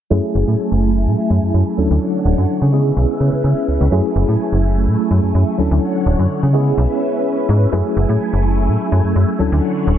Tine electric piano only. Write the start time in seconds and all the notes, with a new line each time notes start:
0.10 F#3 A3 C#4 E4 G#4
1.77 F#3 C#4 D4 E4 A4
2.72 G#3 B3 C#4 E4 G#4
3.91 F#3 A3 C#4 E4 G#4
5.58 F#3 C#4 D4 E4 A4
6.53 G#3 B3 C#4 E4 G#4
7.72 F#3 A3 C#4 E4 G#4
9.39 F#3 C#4 D4 E4 A4